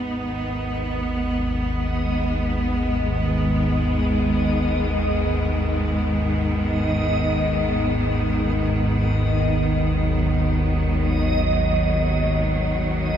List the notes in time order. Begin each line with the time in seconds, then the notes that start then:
Already playing: G#1 D#2 G#2 B3 D#4 D#5
0.20 D#3
1.94 G#3
9.96 F#3